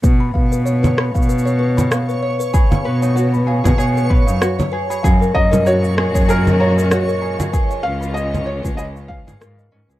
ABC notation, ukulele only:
X:1
M:4/4
L:1/16
Q:"Swing 16ths" 1/4=96
K:Blyd
V:1 name="Ukulele"
z16 | G2 B D F z G G G2 B D F z G G | G2 A C F z G G G2 A C F z G G | G2 C E G z c G G z G G E z C G |]